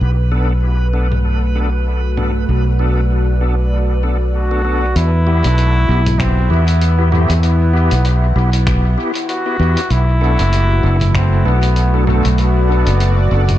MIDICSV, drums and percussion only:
0, 0, Header, 1, 2, 480
1, 0, Start_track
1, 0, Tempo, 618557
1, 9, Time_signature, 4, 2, 24, 8
1, 10541, End_track
2, 0, Start_track
2, 0, Title_t, "Drums"
2, 867, Note_on_c, 9, 45, 53
2, 944, Note_off_c, 9, 45, 0
2, 1688, Note_on_c, 9, 45, 52
2, 1765, Note_off_c, 9, 45, 0
2, 3849, Note_on_c, 9, 42, 41
2, 3926, Note_off_c, 9, 42, 0
2, 4224, Note_on_c, 9, 42, 54
2, 4302, Note_off_c, 9, 42, 0
2, 4330, Note_on_c, 9, 42, 42
2, 4407, Note_off_c, 9, 42, 0
2, 4706, Note_on_c, 9, 42, 55
2, 4706, Note_on_c, 9, 45, 66
2, 4784, Note_off_c, 9, 42, 0
2, 4784, Note_off_c, 9, 45, 0
2, 4808, Note_on_c, 9, 36, 102
2, 4809, Note_on_c, 9, 26, 89
2, 4809, Note_on_c, 9, 42, 42
2, 4886, Note_off_c, 9, 36, 0
2, 4887, Note_off_c, 9, 26, 0
2, 4887, Note_off_c, 9, 42, 0
2, 5183, Note_on_c, 9, 42, 52
2, 5260, Note_off_c, 9, 42, 0
2, 5288, Note_on_c, 9, 42, 42
2, 5366, Note_off_c, 9, 42, 0
2, 5527, Note_on_c, 9, 45, 63
2, 5605, Note_off_c, 9, 45, 0
2, 5663, Note_on_c, 9, 42, 57
2, 5741, Note_off_c, 9, 42, 0
2, 5767, Note_on_c, 9, 42, 43
2, 5845, Note_off_c, 9, 42, 0
2, 6140, Note_on_c, 9, 42, 55
2, 6218, Note_off_c, 9, 42, 0
2, 6246, Note_on_c, 9, 42, 45
2, 6323, Note_off_c, 9, 42, 0
2, 6622, Note_on_c, 9, 42, 55
2, 6699, Note_off_c, 9, 42, 0
2, 6726, Note_on_c, 9, 26, 90
2, 6726, Note_on_c, 9, 42, 44
2, 6727, Note_on_c, 9, 36, 107
2, 6804, Note_off_c, 9, 26, 0
2, 6804, Note_off_c, 9, 36, 0
2, 6804, Note_off_c, 9, 42, 0
2, 7104, Note_on_c, 9, 42, 52
2, 7181, Note_off_c, 9, 42, 0
2, 7209, Note_on_c, 9, 42, 45
2, 7287, Note_off_c, 9, 42, 0
2, 7582, Note_on_c, 9, 42, 56
2, 7659, Note_off_c, 9, 42, 0
2, 7686, Note_on_c, 9, 42, 42
2, 7764, Note_off_c, 9, 42, 0
2, 8064, Note_on_c, 9, 42, 54
2, 8141, Note_off_c, 9, 42, 0
2, 8169, Note_on_c, 9, 42, 44
2, 8247, Note_off_c, 9, 42, 0
2, 8545, Note_on_c, 9, 42, 58
2, 8545, Note_on_c, 9, 45, 62
2, 8623, Note_off_c, 9, 42, 0
2, 8623, Note_off_c, 9, 45, 0
2, 8649, Note_on_c, 9, 26, 95
2, 8649, Note_on_c, 9, 42, 41
2, 8651, Note_on_c, 9, 36, 109
2, 8727, Note_off_c, 9, 26, 0
2, 8727, Note_off_c, 9, 42, 0
2, 8729, Note_off_c, 9, 36, 0
2, 9024, Note_on_c, 9, 42, 51
2, 9102, Note_off_c, 9, 42, 0
2, 9127, Note_on_c, 9, 42, 43
2, 9205, Note_off_c, 9, 42, 0
2, 9369, Note_on_c, 9, 45, 57
2, 9446, Note_off_c, 9, 45, 0
2, 9506, Note_on_c, 9, 42, 54
2, 9583, Note_off_c, 9, 42, 0
2, 9609, Note_on_c, 9, 42, 41
2, 9686, Note_off_c, 9, 42, 0
2, 9984, Note_on_c, 9, 42, 51
2, 10062, Note_off_c, 9, 42, 0
2, 10091, Note_on_c, 9, 42, 41
2, 10168, Note_off_c, 9, 42, 0
2, 10466, Note_on_c, 9, 42, 54
2, 10466, Note_on_c, 9, 45, 62
2, 10541, Note_off_c, 9, 42, 0
2, 10541, Note_off_c, 9, 45, 0
2, 10541, End_track
0, 0, End_of_file